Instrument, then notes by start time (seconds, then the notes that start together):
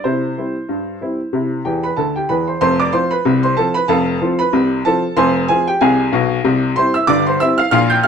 upright piano
0.04 C3 E4 C5
0.38 G3 C4 E4
0.69 G2
1.01 G3 C4 E4
1.33 C3 E4
1.65 E2 E3 G4 G5
1.83 B4 B5
1.96 D2 D3 A4 A5
2.16 G4 G5
2.29 E2 E3 B4 B5
2.47 C5 C6
2.61 F1 F2 C5 C6
2.80 D5 D6
2.93 F3 C4 F4 C5 C6
3.11 B4 B5
3.25 C2 C3
3.43 C5 C6
3.57 F3 C4 F4 A4 A5
3.74 B4 B5
3.88 F1 F2 A4 F5 A5
4.21 F3 C4 F4
4.39 B4 B5
4.53 C2 C3
4.85 F3 C4 F4 A4 A5
5.17 F1 F2 C5 G#5 C6
5.48 F3 C4 F4 G#4 G#5
5.68 G4 G5
5.81 C2 C3 G#4 F5 G#5
6.13 B1 B2
6.44 C2 C3
6.76 G3 C4 E4 C5 C6
6.94 E5 E6
7.07 G1 G2 D5 D6
7.27 C5 C6
7.40 G3 C4 E4 E5 E6
7.58 F5 F6
7.71 A#1 A#2 F5 F6
7.90 G5 G6
8.03 G3 D4 F5 F6